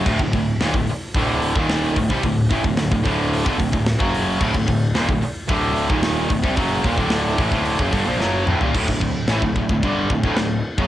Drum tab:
CC |x---------------|----------------|x---------------|----------------|
HH |--o-o-o-o-o-o-o-|o-o-o-o-o-o-o-o-|--o-o-o-o-o-o-o-|o-o-o-o-o-o-----|
SD |----o-------o---|----o-------o---|----o-------o---|----o-------o---|
T2 |----------------|----------------|----------------|--------------o-|
FT |----------------|----------------|----------------|---------------o|
BD |ooo--o--o--o--oo|o-oo-oo--ooo-o--|ooo--o--o--o--oo|o-oo--oo-oo-----|

CC |x---x---x---x---|
HH |----------------|
SD |----o-------o---|
T2 |----------------|
FT |----------------|
BD |ooo--oooo-oo---o|